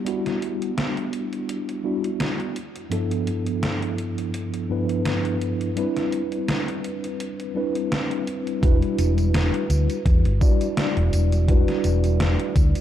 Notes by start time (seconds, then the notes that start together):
Already playing: G3 B3 D4 E4 G4
0.05 G3 B3 D4 E4 F#4, closed hi-hat
0.26 snare, closed hi-hat
0.42 closed hi-hat
0.62 closed hi-hat
0.78 snare, closed hi-hat
0.97 closed hi-hat
1.13 closed hi-hat
1.33 closed hi-hat
1.49 closed hi-hat
1.69 closed hi-hat
1.84 G3 B3 D4 E4 F#4
2.04 closed hi-hat
2.20 snare, closed hi-hat
2.40 closed hi-hat
2.56 closed hi-hat
2.76 closed hi-hat
2.89 G2 F3 B3 D4 E4 A4, closed hi-hat
3.11 closed hi-hat
3.27 closed hi-hat
3.46 closed hi-hat
3.63 snare, closed hi-hat
3.82 closed hi-hat
3.98 closed hi-hat
4.18 closed hi-hat
4.34 closed hi-hat
4.54 closed hi-hat
4.69 G2 F3 B3 D4 E4 B4
4.89 closed hi-hat
5.05 snare, closed hi-hat
5.25 closed hi-hat
5.42 closed hi-hat
5.61 closed hi-hat
5.76 G3 C4 D4 E4 B4, closed hi-hat
5.97 snare, closed hi-hat
6.13 closed hi-hat
6.32 closed hi-hat
6.48 snare, closed hi-hat
6.68 closed hi-hat
6.84 closed hi-hat
7.04 closed hi-hat
7.20 closed hi-hat
7.40 closed hi-hat
7.54 G3 C4 D4 E4 B4
7.75 closed hi-hat
7.92 snare, closed hi-hat
8.11 closed hi-hat
8.27 closed hi-hat
8.47 closed hi-hat
8.62 E1 G3 D4 E4 F#4 B4, kick, closed hi-hat, tambourine
8.82 closed hi-hat
8.98 E1, closed hi-hat, tambourine
9.18 closed hi-hat, tambourine
9.34 snare, closed hi-hat, tambourine
9.54 closed hi-hat
9.70 D2, closed hi-hat, tambourine
9.90 closed hi-hat, tambourine
10.05 E2, kick, closed hi-hat, tambourine
10.25 G1, closed hi-hat
10.40 G3 D4 E4 F#4 D5, kick, tambourine
10.61 closed hi-hat, tambourine
10.77 snare, closed hi-hat, tambourine
10.97 E1, closed hi-hat
11.13 E1, closed hi-hat, tambourine
11.32 closed hi-hat, tambourine
11.47 G3 D4 E4 F#4 B4, kick, closed hi-hat, tambourine
11.68 snare, closed hi-hat
11.84 E1, closed hi-hat, tambourine
12.04 closed hi-hat, tambourine
12.20 snare, closed hi-hat, tambourine
12.40 closed hi-hat
12.56 D2, kick, closed hi-hat, tambourine
12.75 closed hi-hat, tambourine